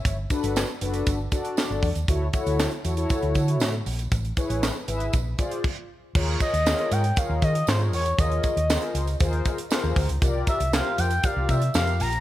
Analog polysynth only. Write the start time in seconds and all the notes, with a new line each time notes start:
Already playing: C#5 E5
0.30 D4 F#4 A4 B4
0.81 D4 F#4 A4 B4
1.31 D4 F#4 A4 D5
2.08 E4 F#4 A4 C#5
2.33 E4 F#4 A4 C#5
2.84 E4 F#4 A4 C#5
2.97 E4 F#4 A4 C#5
4.37 E4 G#4 B4 C#5
4.88 E4 G#4 B4 E5
5.38 F4 G#4 C5 D5
6.15 F4 G#4 A#4 C#5
6.65 F4 G#4 A#4 C#5
7.17 F4 G#4 A#4 C#5
7.67 F4 G#4 A#4 C5
7.74 C#5
8.18 F4 G#4 A#4 C#5
8.69 F4 G#4 A#4 C5
9.20 F4 G#4 A#4 C5
9.71 F4 G#4 A#4 C5
10.21 F4 G4 A#4 D5
10.72 E4 G4 A#4 C5
10.78 F4
11.23 F4 G4 A#4 D5
11.74 F4 G4 A#4 F5